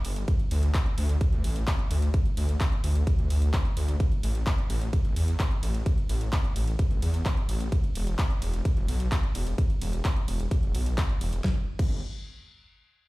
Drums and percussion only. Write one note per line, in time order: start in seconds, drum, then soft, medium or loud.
0.05 open hi-hat loud
0.05 ride medium
0.16 closed hi-hat medium
0.28 kick loud
0.28 closed hi-hat medium
0.28 ride medium
0.40 closed hi-hat soft
0.51 open hi-hat loud
0.51 ride medium
0.63 closed hi-hat medium
0.74 kick loud
0.74 clap loud
0.74 closed hi-hat medium
0.74 ride medium
0.86 closed hi-hat soft
0.98 open hi-hat loud
0.98 ride medium
1.09 closed hi-hat medium
1.21 kick loud
1.21 closed hi-hat medium
1.21 ride medium
1.33 closed hi-hat soft
1.44 open hi-hat loud
1.44 ride medium
1.56 closed hi-hat medium
1.67 kick loud
1.67 clap loud
1.67 closed hi-hat medium
1.67 ride medium
1.79 closed hi-hat soft
1.91 open hi-hat loud
1.91 ride medium
2.02 closed hi-hat medium
2.14 kick loud
2.14 closed hi-hat soft
2.14 ride medium
2.26 closed hi-hat soft
2.37 open hi-hat loud
2.37 ride medium
2.49 closed hi-hat soft
2.60 kick loud
2.60 clap loud
2.60 closed hi-hat soft
2.60 ride medium
2.72 closed hi-hat soft
2.84 open hi-hat loud
2.84 ride medium
2.95 closed hi-hat medium
3.07 kick loud
3.07 closed hi-hat medium
3.07 ride medium
3.19 closed hi-hat soft
3.30 open hi-hat loud
3.30 ride medium
3.42 closed hi-hat medium
3.54 kick loud
3.54 clap loud
3.54 closed hi-hat soft
3.54 ride medium
3.65 closed hi-hat soft
3.77 open hi-hat loud
3.77 ride medium
3.88 closed hi-hat medium
4.00 kick loud
4.00 closed hi-hat soft
4.00 ride medium
4.12 closed hi-hat soft
4.23 open hi-hat loud
4.23 ride medium
4.35 closed hi-hat soft
4.47 kick loud
4.47 clap loud
4.47 closed hi-hat soft
4.47 ride medium
4.58 closed hi-hat soft
4.70 open hi-hat loud
4.70 ride medium
4.82 closed hi-hat medium
4.93 kick loud
4.93 closed hi-hat soft
4.93 ride medium
5.05 closed hi-hat soft
5.16 open hi-hat loud
5.16 ride medium
5.28 closed hi-hat medium
5.40 kick loud
5.40 clap loud
5.40 closed hi-hat medium
5.40 ride medium
5.51 closed hi-hat soft
5.63 open hi-hat loud
5.63 ride medium
5.75 closed hi-hat medium
5.86 kick loud
5.86 closed hi-hat medium
5.86 ride medium
5.98 closed hi-hat soft
6.09 open hi-hat loud
6.09 ride medium
6.21 closed hi-hat medium
6.33 kick loud
6.33 clap loud
6.33 closed hi-hat medium
6.33 ride medium
6.44 closed hi-hat soft
6.56 open hi-hat loud
6.56 ride medium
6.68 closed hi-hat medium
6.79 kick loud
6.79 closed hi-hat medium
6.79 ride medium
6.91 closed hi-hat soft
7.02 open hi-hat loud
7.02 ride medium
7.14 closed hi-hat medium
7.26 kick loud
7.26 clap loud
7.26 closed hi-hat medium
7.26 ride medium
7.37 closed hi-hat soft
7.49 open hi-hat loud
7.49 ride medium
7.61 closed hi-hat medium
7.72 kick loud
7.72 closed hi-hat medium
7.72 ride medium
7.84 closed hi-hat soft
7.95 open hi-hat loud
7.95 ride medium
8.07 closed hi-hat medium
8.19 kick loud
8.19 clap loud
8.19 closed hi-hat medium
8.19 ride medium
8.30 closed hi-hat soft
8.42 open hi-hat loud
8.42 ride medium
8.54 closed hi-hat medium
8.65 kick loud
8.65 closed hi-hat medium
8.65 ride medium
8.77 closed hi-hat soft
8.88 open hi-hat loud
8.88 ride medium
9.00 closed hi-hat medium
9.12 kick loud
9.12 clap loud
9.12 closed hi-hat medium
9.12 ride medium
9.23 closed hi-hat soft
9.35 open hi-hat loud
9.35 ride medium
9.47 closed hi-hat medium
9.58 kick loud
9.58 closed hi-hat medium
9.58 ride medium
9.70 closed hi-hat soft
9.82 open hi-hat loud
9.82 ride medium
9.93 closed hi-hat medium
10.05 kick loud
10.05 clap loud
10.05 closed hi-hat medium
10.05 ride medium
10.16 closed hi-hat soft
10.28 open hi-hat loud
10.28 ride medium
10.40 closed hi-hat medium
10.51 kick loud
10.51 closed hi-hat medium
10.51 ride medium
10.63 closed hi-hat soft
10.75 open hi-hat loud
10.75 ride medium
10.86 closed hi-hat medium
10.98 kick loud
10.98 clap loud
10.98 closed hi-hat medium
10.98 ride medium
11.10 closed hi-hat soft
11.21 open hi-hat loud
11.21 ride medium
11.33 closed hi-hat medium
11.44 kick loud
11.44 snare medium
11.79 kick loud
11.79 crash medium